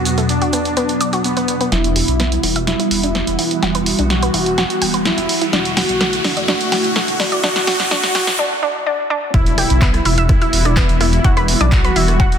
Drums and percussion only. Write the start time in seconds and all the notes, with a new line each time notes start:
0.05 closed hi-hat, maracas
0.18 closed hi-hat, maracas
0.29 closed hi-hat, maracas
0.42 closed hi-hat, maracas
0.53 closed hi-hat, maracas
0.65 closed hi-hat, maracas
0.77 closed hi-hat, maracas
0.89 closed hi-hat, maracas
1.01 closed hi-hat, maracas
1.13 closed hi-hat, maracas
1.24 closed hi-hat, maracas
1.37 closed hi-hat, maracas
1.48 closed hi-hat, maracas
1.61 closed hi-hat, maracas
1.72 snare, closed hi-hat
1.84 closed hi-hat
1.96 open hi-hat
2.08 closed hi-hat
2.20 snare, closed hi-hat
2.32 closed hi-hat
2.43 open hi-hat
2.56 closed hi-hat
2.67 snare, closed hi-hat
2.80 closed hi-hat
2.91 open hi-hat
3.03 closed hi-hat
3.15 snare, closed hi-hat
3.27 closed hi-hat
3.39 open hi-hat
3.51 closed hi-hat
3.63 snare, closed hi-hat
3.75 closed hi-hat
3.86 open hi-hat
3.99 closed hi-hat
4.10 snare, closed hi-hat
4.23 closed hi-hat
4.34 open hi-hat
4.46 closed hi-hat
4.58 snare, closed hi-hat
4.70 closed hi-hat
4.82 open hi-hat
4.94 closed hi-hat
5.05 snare, closed hi-hat
5.18 closed hi-hat
5.29 open hi-hat
5.42 closed hi-hat
5.53 snare, closed hi-hat
5.65 closed hi-hat
5.77 snare, open hi-hat
5.89 closed hi-hat
6.01 snare, closed hi-hat
6.13 closed hi-hat
6.24 snare, open hi-hat
6.37 closed hi-hat
6.48 snare, closed hi-hat
6.61 closed hi-hat
6.72 snare, open hi-hat
6.84 closed hi-hat
6.96 snare, closed hi-hat
7.08 closed hi-hat
7.20 snare, open hi-hat
7.32 closed hi-hat
7.44 snare, closed hi-hat
7.56 snare, closed hi-hat
7.67 snare, open hi-hat
7.80 snare, closed hi-hat
7.91 snare, closed hi-hat
8.04 snare, closed hi-hat
8.15 snare, open hi-hat
8.27 snare, closed hi-hat
9.34 kick, closed hi-hat
9.46 closed hi-hat
9.58 cross-stick, open hi-hat
9.70 closed hi-hat
9.82 kick, clap, closed hi-hat
9.94 cross-stick, closed hi-hat
10.05 open hi-hat
10.18 closed hi-hat
10.29 kick, cross-stick, closed hi-hat
10.42 closed hi-hat
10.53 open hi-hat
10.65 cross-stick, closed hi-hat
10.77 kick, clap, closed hi-hat
10.89 closed hi-hat
11.01 cross-stick, open hi-hat
11.13 closed hi-hat
11.24 kick, closed hi-hat
11.37 cross-stick, closed hi-hat
11.48 open hi-hat
11.61 closed hi-hat
11.72 kick, cross-stick, clap, closed hi-hat
11.84 closed hi-hat
11.96 open hi-hat
12.08 cross-stick, closed hi-hat
12.20 kick, closed hi-hat
12.32 closed hi-hat